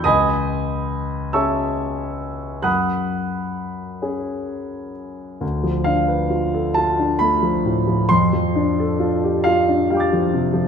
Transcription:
0.04 C#2 D#5 G#5 B5 D#6
1.33 C#4 G#4 E5 A5 C#6 E6
2.62 F#2 F#5 B5 D#6 F#6
4.02 C#4 G#4
5.41 D2
5.63 F3
5.84 D4 F5
6.08 B4
6.30 F4
6.54 A4
6.74 F4 A5
6.99 D4
7.19 A3 B5
7.43 F3
7.65 A2
7.87 F3
8.09 F2 C6
8.33 F3
8.56 D4
8.80 A4
9.00 F4
9.24 G4
9.44 F4 F5
9.69 D4
9.90 G3 F5 G5
9.97 D6 A6
10.13 F3
10.33 C3
10.54 F3

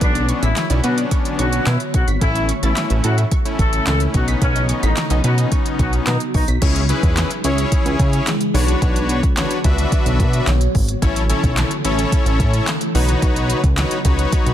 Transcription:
Already playing: D3 F#3 B3 C#4 D4 F#4 C#5
0.01 B1 D3 D4 B4, kick, closed hi-hat
0.15 D5, closed hi-hat
0.29 C#6, closed hi-hat
0.43 A1 E3 E4 B6, closed hi-hat
0.56 C#6, snare, clap, closed hi-hat
0.70 B1 B3 C#4 E4 D5, closed hi-hat
0.84 B2 F#3 B3 C#4 D4 F#4 B4, closed hi-hat
0.98 D5, closed hi-hat
1.11 C#6, kick, closed hi-hat
1.25 closed hi-hat
1.39 B1 F#3 F#4 C#6, closed hi-hat
1.53 closed hi-hat
1.66 B2 E3 E4, snare, clap, closed hi-hat
1.80 closed hi-hat
1.94 B1 F#3 F#4 C#6, kick, closed hi-hat
2.08 G#1 B6, closed hi-hat
2.21 A1 C#3 E3 A3 C#4 E4 A4, kick, closed hi-hat
2.35 E5, closed hi-hat
2.49 C#6, closed hi-hat
2.63 A1 E3 A3 C#4 E4 A6, closed hi-hat
2.76 C#6, snare, clap, closed hi-hat
2.90 A1 E5, closed hi-hat
3.04 A2 F#3 F#4 A4, closed hi-hat
3.18 E5, closed hi-hat
3.32 C#6, kick, closed hi-hat
3.45 A3 C#4 E4, closed hi-hat
3.59 A1 A3 A4 C#6, kick, closed hi-hat
3.73 closed hi-hat
3.87 C#2 A3 A4, snare, clap, closed hi-hat
4.00 closed hi-hat
4.14 B1 F#3 B3 C#4 D#4 F#4 C#6, kick, closed hi-hat
4.28 B6, closed hi-hat
4.42 B1 C#3 C#4 B4, kick, closed hi-hat
4.56 D#5, closed hi-hat
4.69 C#6, closed hi-hat
4.83 A1 D#3 D#4 B6, closed hi-hat
4.97 C#6, snare, clap, closed hi-hat
5.10 B1 B3 C#4 D#4 D#5, closed hi-hat
5.24 B2 F#3 B3 C#4 D#4 F#4 B4, closed hi-hat
5.38 D#5, closed hi-hat
5.52 C#6, kick, closed hi-hat
5.66 closed hi-hat
5.79 B1 F#3 F#4 C#6, kick, closed hi-hat
5.93 closed hi-hat
6.07 B2 D#3 D#4, snare, clap, closed hi-hat
6.20 closed hi-hat
6.34 B1 D#3 D#4 C#6, kick, open hi-hat
6.48 B1 B6, closed hi-hat
6.62 C#2 C#3 E3 G#3 C#4 E4 G#4 C#5, kick, closed hi-hat, crash
6.76 closed hi-hat
6.89 C#4 E4 G#4 B4, closed hi-hat
7.03 E2, kick, closed hi-hat
7.17 snare, clap, closed hi-hat
7.31 closed hi-hat
7.44 C#2 C#4 E4 G#4 C#5, closed hi-hat
7.58 closed hi-hat
7.72 kick, closed hi-hat
7.86 C#2, closed hi-hat
7.99 C#3, kick, closed hi-hat
8.13 closed hi-hat
8.27 snare, clap, closed hi-hat
8.41 closed hi-hat
8.54 B1 D3 F#3 B3 D4 F#4 B4 C#5, open hi-hat
8.68 closed hi-hat
8.82 B1, kick, closed hi-hat
8.96 closed hi-hat
9.09 closed hi-hat
9.23 C#2, kick, closed hi-hat
9.37 D4 F#4 B4 C#5, snare, clap, closed hi-hat
9.51 closed hi-hat
9.64 C#2 D4 F#4 B4 E5, kick, closed hi-hat
9.78 closed hi-hat
9.92 kick, closed hi-hat
10.06 B1, closed hi-hat
10.20 B2, kick, closed hi-hat
10.33 closed hi-hat
10.47 B1, snare, clap, closed hi-hat
10.61 closed hi-hat
10.75 G#1, kick, open hi-hat
10.88 closed hi-hat
11.02 A1 C#3 E3 A3 C#4 E4 A4 C#5, kick, closed hi-hat
11.16 closed hi-hat
11.29 C#4 E4 A4 C#5, closed hi-hat
11.43 B1, kick, closed hi-hat
11.57 snare, clap, closed hi-hat
11.71 closed hi-hat
11.84 A1 C#4 E4 A4 C#5, closed hi-hat
11.99 closed hi-hat
12.12 kick, closed hi-hat
12.26 A1, closed hi-hat
12.40 A2, kick, closed hi-hat
12.53 closed hi-hat
12.67 snare, clap, closed hi-hat
12.81 closed hi-hat
12.95 B1 F#3 B3 D#4 F#4 B4 C#5, open hi-hat
13.09 closed hi-hat
13.22 B1, kick, closed hi-hat
13.36 closed hi-hat
13.50 closed hi-hat
13.64 C#2, kick, closed hi-hat
13.77 D#4 F#4 B4 C#5, snare, clap, closed hi-hat
13.91 closed hi-hat
14.05 C#2 D#4 F#4 B4 C#5, kick, closed hi-hat
14.19 closed hi-hat
14.32 kick, closed hi-hat
14.46 B1, closed hi-hat

